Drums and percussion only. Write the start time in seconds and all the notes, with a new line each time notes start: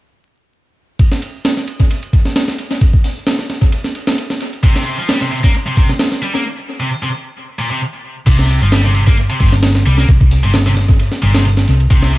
0.99 kick, ride
1.12 snare
1.22 ride
1.45 snare, ride
1.57 snare
1.68 ride
1.80 kick
1.91 ride
2.03 ride
2.13 kick, ride
2.25 snare
2.36 snare, ride
2.48 snare
2.58 ride
2.71 snare
2.81 kick, ride
2.93 kick
3.04 open hi-hat
3.27 snare, ride
3.39 snare
3.50 snare, ride
3.62 kick
3.72 ride
3.84 snare
3.95 ride
4.07 snare
4.18 ride
4.30 snare
4.40 ride
4.53 ride
4.63 kick, ride
4.76 snare
4.86 ride
5.09 snare, ride
5.21 snare
5.32 ride
5.44 kick
5.54 ride
5.67 ride
5.77 kick, ride
5.89 snare
5.99 snare, ride
6.12 snare
6.23 ride
6.35 snare
8.27 kick, crash, ride
8.39 snare
8.49 ride
8.72 snare, ride
8.84 snare
8.95 ride
9.07 kick
9.17 ride
9.30 ride
9.40 kick, ride
9.52 snare
9.63 snare, ride
9.75 snare
9.86 ride
9.98 snare
10.08 kick, ride
10.21 kick
10.31 open hi-hat
10.54 snare, ride
10.66 snare
10.77 snare, ride
10.89 kick
10.99 ride
11.12 snare
11.22 ride
11.34 snare
11.45 ride
11.57 snare
11.68 ride
11.80 ride
11.90 kick, ride
12.02 snare
12.13 ride